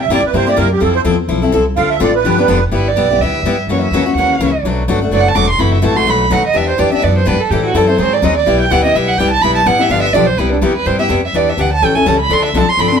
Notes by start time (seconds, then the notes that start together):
0.02 E5
0.09 A2 C3 G3 A#3 E4 G4
0.13 D5
0.23 B4, muted upright bass stroke
0.33 G2 C3 G3 A#3 E4 G4 C5
0.47 A#3 E4 G4 D5
0.56 F#2 C3 G3 A#3 E4 G4 A#4
0.73 G4
0.80 F2 F3 C4 E4 A4
0.96 C5
1.04 E2 F3 C4 E4 A4
1.28 B1 F3 C4 E4 A4
1.42 C4 E4 A4
1.52 C2 F3 C4 E4 A4
1.76 D2 D3 A3 C4 F4 A4 F5
1.90 E5
2.00 A1 D3 A3 C4 F4 A4 D5
2.15 B4
2.24 G1 D3 F3 B3 D4 G4
2.38 B3 D4 G4
2.48 F1 D3 F3 B3 D4 G4
2.71 G1 G3 B3 E4 G4 B4
2.88 D5
2.96 B1 G3 B3 E4 G4
3.11 B3 E4 G4
3.20 D2 G3 B3 E4 G4 E5
3.43 G2 G3 B3 E4
3.47 G4
3.67 F#2 C#3 E3 A#3 C#4 F#4
3.72 C#5
3.82 E5
3.91 E2 C#3 E3 A#3 C#4 F#4
4.06 A#3 C#4 F#4
4.15 D#2 C#3 E3 A#3 F#5
4.19 C#4 F#4
4.39 C#2 C#3 E3 A#3 C#4 F#4
4.63 B1 B2 F#3 A3 D4 F#4
4.88 G1 B2 F#3 A3 D4 F#4
5.02 A3 D4 F#4
5.10 F#1 B2 F#3 A3 D4 F#4 D5
5.21 F#5
5.28 A5
5.35 E1 B2 F#3 A3 D4 F#4 D6
5.49 C6
5.58 F#1 C3 E3 A3 E4 F#4 B5
5.74 E5
5.82 A1 C3 E3 A3 E4 F#4 A5
5.95 A3 E4 F#4 C6
6.06 B1 B2 F#3 A3 D#4 F#4 B5
6.30 D#2 B2 F#3 A3 D#4 F#4 F#5
6.47 D#5
6.53 E2 E3 B3 D4 G4 E5
6.69 C5
6.78 F2 E3 B3 D4 G4 D5
6.92 B3 D4 G4 E5, muted upright bass stroke
7.01 F#2 E3 B3 D4 G4 D5
7.17 C5
7.25 G#2 E3 B3 D4 G4 B4
7.40 A4, muted upright bass stroke
7.50 A2 E3 G3 C4 E4 G4 A4
7.66 F#4
7.74 F#2 E3 G3 C4 E4 A4
7.87 C4 E4 A4 C5
7.98 G#2 D#3 F#3 C4 D#4 G#4 C5
8.13 D5
8.22 D#2 D#3 F#3 C4 D#4 G#4 D#5
8.38 D5
8.46 B1 G3 B3 E4 G4
8.60 G5
8.70 D2 G3 B3 E4 G4 F#5
8.84 B3 E4 G4 D#5
8.94 B1 G3 B3 E4 G4 E5
9.08 F#5
9.17 C2 G3 B3 E4 G4 G5
9.30 A5
9.41 B1 G3 B3 E4 G4 B5
9.55 A5
9.66 A1 G3 B3 E4 G4 F#5
9.78 B3 E4 G4 E5
9.89 G1 D3 F3 B3 D4 G4 F5
10.02 E5
10.13 B1 D3 F3 B3 D4 G4 D5
10.27 C5
10.37 C2 C3 G3 B3 E4 G4 B4
10.52 D4
10.62 E2 C3 G3 B3 E4 G4
10.76 B4
10.85 G2 C3 G3 B3 E4 G4 C5
10.99 B3 E4 G4 E5
11.09 F2 C3 G3 B3 E4 G4
11.25 E5
11.33 E2 E3 B3 D4 G4 D5
11.49 E5
11.57 D2 E3 B3 D4 G4 F#5
11.73 A5
11.82 A1 E3 G3 C#4 E4 A4 G5
11.95 C#4 E4 A4 G#5
12.05 C#2 E3 G3 C#4 E4 A4 A5
12.20 B5
12.29 D2 D3 F3 C4 D4 A4 C6
12.45 E5
12.53 C2 D3 F3 C4 D4 A4
12.58 A5
12.67 C6, muted upright bass stroke
12.77 G1 D3 F3 C4 D4 A4 B5
12.88 D4 A4 C6
12.92 C4
12.96 B5